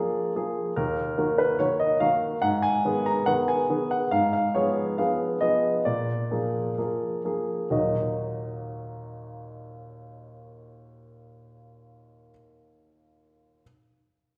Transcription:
0.00 0.31 F3 soft
0.00 0.32 A#3 soft
0.00 0.32 G#4 soft
0.00 0.36 D5 medium
0.35 0.72 F3 soft
0.35 0.72 A#3 soft
0.35 0.72 G#4 soft
0.76 1.16 D#2 medium
0.76 1.38 A#4 medium
1.18 1.55 D#3 soft
1.18 1.55 A#3 soft
1.18 1.55 F#4 soft
1.38 1.59 B4 medium
1.59 1.96 D#3 soft
1.59 1.97 A#3 soft
1.59 1.97 F#4 soft
1.59 1.79 C#5 medium
1.80 2.00 D#5 medium
2.00 2.38 D#3 soft
2.00 2.38 A#3 soft
2.00 2.39 F#4 soft
2.00 2.42 F5 medium
2.42 2.83 G#2 medium
2.42 2.63 F#5 medium
2.62 3.05 G#5 medium
2.85 3.22 D#3 soft
2.85 3.23 B3 soft
2.85 3.23 G#4 soft
3.06 3.26 A#5 medium
3.26 3.64 D#3 soft
3.26 3.65 B3 soft
3.26 3.65 G#4 soft
3.26 3.47 F#5 medium
3.48 3.90 G#5 medium
3.70 4.07 D#3 soft
3.70 4.07 B3 soft
3.70 4.07 G#4 soft
3.91 4.11 F#5 medium
4.11 4.53 G#2 medium
4.11 4.32 F5 medium
4.33 4.54 F5 medium
4.55 4.94 F3 soft
4.55 4.94 B3 soft
4.55 4.94 G#4 soft
4.55 4.98 C#5 medium
4.98 5.38 F3 soft
4.98 5.38 B3 soft
4.98 5.38 G#4 soft
4.98 5.41 F5 medium
5.41 5.82 F3 soft
5.41 5.82 B3 soft
5.41 5.82 G#4 soft
5.41 5.85 D#5 medium
5.85 6.30 A#2 soft
5.85 7.24 D5 medium
6.31 6.73 F3 soft
6.31 6.73 A#3 soft
6.31 6.74 G#4 soft
6.78 7.21 F3 soft
6.78 7.21 A#3 soft
6.78 7.21 G#4 soft
7.25 7.67 F3 soft
7.25 7.68 A#3 soft
7.25 7.68 G#4 soft
7.70 12.29 D#2 soft
7.70 12.30 A#2 soft
7.70 12.30 F#3 soft
7.70 12.30 A#3 soft
7.70 12.31 D#4 soft
7.70 12.31 F#4 soft
7.70 12.31 D#5 soft

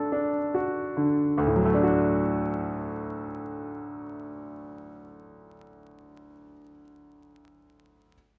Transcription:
0.00 1.30 D2 soft
0.00 0.12 D4 soft
0.00 0.54 F#4 soft
0.00 1.40 A4 soft
0.12 0.80 D4 soft
0.54 1.21 F#4 soft
0.97 1.37 D3 soft
1.38 6.33 D2 soft
1.47 6.43 A2 soft
1.56 6.52 F#3 soft
1.65 6.61 A3 soft
1.74 6.70 D4 soft
1.83 6.79 F#4 soft

